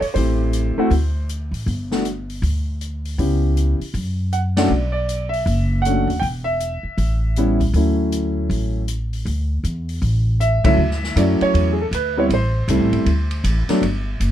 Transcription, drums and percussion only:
0.02 open hi-hat
0.15 kick, open hi-hat
0.53 closed hi-hat
0.91 kick, open hi-hat
1.29 closed hi-hat
1.54 open hi-hat
1.67 kick, open hi-hat
1.91 snare
2.05 closed hi-hat
2.30 open hi-hat
2.43 kick, open hi-hat
2.81 closed hi-hat
3.05 open hi-hat
3.19 kick, open hi-hat
3.57 closed hi-hat
3.81 open hi-hat
3.94 kick, open hi-hat
4.33 closed hi-hat
4.57 snare, ride
5.09 closed hi-hat
5.33 open hi-hat
5.46 kick, open hi-hat
5.85 closed hi-hat
6.10 open hi-hat
6.22 kick, open hi-hat
6.60 closed hi-hat
6.98 kick, open hi-hat
7.36 closed hi-hat
7.60 kick, open hi-hat
7.74 kick, open hi-hat
8.12 closed hi-hat
8.50 kick, open hi-hat
8.88 closed hi-hat
9.13 open hi-hat
9.26 kick, open hi-hat
9.64 closed hi-hat
9.89 open hi-hat
10.02 kick, open hi-hat
10.41 closed hi-hat
10.65 kick, ride
10.91 snare
11.04 snare
11.16 kick, hi-hat pedal, ride
11.41 ride
11.54 kick, ride
11.92 kick, hi-hat pedal, ride
12.30 kick, ride
12.68 kick, hi-hat pedal, ride
12.93 ride
13.06 kick, ride
13.31 ride
13.44 kick, hi-hat pedal, ride
13.69 snare, ride
13.82 kick, ride
14.20 kick, hi-hat pedal, ride

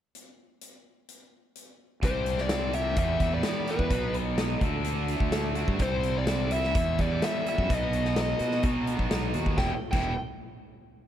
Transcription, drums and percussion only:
0.15 closed hi-hat
0.61 closed hi-hat
1.09 closed hi-hat
1.56 closed hi-hat
2.03 kick, closed hi-hat
2.26 closed hi-hat
2.38 snare
2.49 snare, closed hi-hat
2.73 closed hi-hat
2.96 kick, closed hi-hat
3.20 kick, closed hi-hat
3.43 snare, closed hi-hat
3.67 closed hi-hat
3.79 kick
3.90 kick, closed hi-hat
4.14 closed hi-hat
4.38 snare, closed hi-hat
4.61 kick, closed hi-hat
4.84 closed hi-hat
5.08 closed hi-hat
5.20 kick
5.32 snare, closed hi-hat
5.55 closed hi-hat
5.68 kick
5.79 kick, closed hi-hat
6.03 closed hi-hat
6.27 snare, closed hi-hat
6.51 closed hi-hat
6.64 snare
6.75 kick, closed hi-hat
6.98 kick, closed hi-hat
7.22 snare, closed hi-hat
7.46 closed hi-hat
7.58 kick
7.70 kick, closed hi-hat
7.93 closed hi-hat
8.05 snare
8.16 snare, closed hi-hat
8.39 closed hi-hat
8.51 snare
8.63 kick, closed hi-hat
8.87 closed hi-hat
8.99 kick
9.11 snare, closed hi-hat
9.34 closed hi-hat
9.46 kick
9.58 kick, snare
9.93 kick, crash

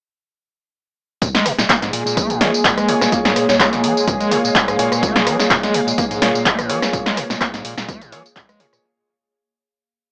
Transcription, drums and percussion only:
1.22 kick, closed hi-hat, tambourine
1.35 snare, closed hi-hat, tambourine
1.46 cross-stick, open hi-hat
1.59 snare, closed hi-hat, tambourine
1.69 kick, clap, closed hi-hat, tambourine
1.82 snare, closed hi-hat, tambourine
1.93 open hi-hat
2.07 tambourine
2.17 kick, cross-stick, closed hi-hat, tambourine
2.30 closed hi-hat, tambourine
2.41 snare, open hi-hat
2.54 tambourine
2.65 kick, clap, closed hi-hat, tambourine
2.78 cross-stick, closed hi-hat, tambourine
2.89 open hi-hat
3.01 cross-stick, snare, closed hi-hat, tambourine
3.12 kick, closed hi-hat, tambourine
3.25 snare, closed hi-hat, tambourine
3.36 cross-stick, open hi-hat
3.49 snare, closed hi-hat, tambourine
3.60 kick, clap, closed hi-hat, tambourine
3.73 snare, closed hi-hat, tambourine
3.84 open hi-hat
3.97 tambourine
4.08 kick, cross-stick, closed hi-hat, tambourine
4.21 closed hi-hat, tambourine
4.31 open hi-hat
4.45 tambourine
4.55 kick, clap, closed hi-hat, tambourine
4.68 cross-stick, closed hi-hat, tambourine
4.79 open hi-hat
4.92 cross-stick, closed hi-hat, tambourine
5.03 kick, closed hi-hat, tambourine
5.16 snare, closed hi-hat, tambourine
5.27 cross-stick, open hi-hat
5.40 snare, closed hi-hat, tambourine
5.50 kick, clap, closed hi-hat, tambourine
5.63 snare, closed hi-hat, tambourine
5.74 open hi-hat
5.88 tambourine
5.98 kick, cross-stick, closed hi-hat, tambourine
6.11 closed hi-hat, tambourine
6.22 snare, open hi-hat
6.35 tambourine
6.46 kick, clap, closed hi-hat, tambourine
6.59 cross-stick, closed hi-hat, tambourine
6.70 open hi-hat
6.82 cross-stick, snare, closed hi-hat, tambourine
6.93 kick, closed hi-hat, tambourine
7.06 snare, clap, closed hi-hat, tambourine
7.17 cross-stick, open hi-hat
7.30 snare, tambourine
7.41 kick, cross-stick, clap, closed hi-hat, tambourine
7.54 snare, closed hi-hat, tambourine
7.65 open hi-hat
7.78 snare, tambourine
7.89 kick, cross-stick, closed hi-hat, tambourine
8.01 closed hi-hat, tambourine
8.12 open hi-hat
8.26 tambourine
8.36 kick, clap, closed hi-hat, tambourine
8.49 cross-stick, closed hi-hat, tambourine
8.60 open hi-hat
8.73 cross-stick, closed hi-hat, tambourine

